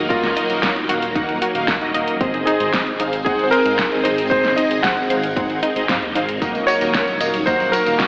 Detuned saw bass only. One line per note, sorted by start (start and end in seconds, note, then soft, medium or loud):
0.10 0.21 D#1 loud
0.23 0.34 C#2 medium
0.50 0.60 D#1 medium
0.63 0.73 D#1 loud
0.76 0.86 D#1 medium
0.89 0.99 D#1 loud
1.02 1.13 D#1 medium
1.15 1.26 D#1 loud
1.29 1.39 D#1 medium
1.55 1.65 D#1 medium
1.68 1.78 C#2 loud
1.81 1.92 D#1 medium
1.94 2.05 D#1 medium
2.07 2.18 D#1 medium
2.21 2.31 G#1 loud
2.34 2.44 F#1 medium
2.60 2.70 G#1 medium
2.73 2.84 G#1 loud
2.86 2.97 G#1 medium
3.00 3.10 G#1 loud
3.13 3.23 G#1 medium
3.26 3.36 G#1 loud
3.39 3.49 G#1 medium
3.65 3.76 G#1 medium
3.79 3.89 F#1 loud
3.92 4.02 G#1 medium
4.05 4.15 G#1 medium
4.18 4.28 G#1 medium
4.31 4.42 G#1 loud
4.44 4.55 F#1 medium
4.71 4.81 G#1 medium
4.84 4.94 G#1 loud
4.97 5.07 G#1 medium
5.10 5.21 G#1 loud
5.23 5.34 G#1 medium
5.37 5.47 G#1 loud
5.50 5.60 G#1 medium
5.76 5.86 G#1 medium
5.89 5.99 G#2 loud
6.02 6.13 D#2 medium
6.15 6.26 G#1 medium
6.29 6.39 G#1 medium
6.42 6.52 D#1 loud
6.55 6.65 C#2 medium
6.81 6.92 D#1 medium
6.94 7.05 D#1 loud
7.08 7.18 D#1 medium
7.21 7.31 D#1 loud
7.34 7.44 D#1 medium
7.47 7.57 D#1 loud
7.60 7.71 D#1 medium
7.86 7.97 D#1 medium
8.00 8.07 C#2 loud